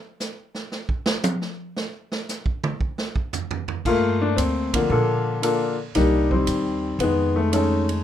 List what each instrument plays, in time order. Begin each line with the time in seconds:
0.20 snare, hi-hat pedal
0.55 snare
0.72 snare
0.89 kick
1.06 snare
1.24 hi-hat pedal, high tom
1.42 snare
1.77 snare
2.12 snare
2.29 snare, hi-hat pedal
2.46 kick
2.64 mid tom
2.81 kick
2.98 snare
3.16 kick
3.33 floor tom, hi-hat pedal
3.51 floor tom
3.68 floor tom
3.85 upright bass G2, grand piano A3 A#3 F4, kick, crash
4.22 grand piano D4
4.36 upright bass D2, grand piano C4, hi-hat pedal, ride
4.74 grand piano D3 F3 A#3, kick, ride
4.90 upright bass A#2, grand piano A#3 D4 F4 A4
5.42 grand piano A#3 D4 F4 A4, hi-hat pedal, ride
5.95 upright bass C2, grand piano G3 A#3 D4 D#4 G4, snare, ride
6.31 grand piano D#3 G3 C4, kick
6.47 upright bass D#2, hi-hat pedal, ride
6.99 upright bass F2, grand piano D#3 B3, ride
7.03 grand piano G#3
7.36 grand piano A3
7.52 grand piano G#3 A3 C#4 D#4 A4, hi-hat pedal, ride
7.89 ride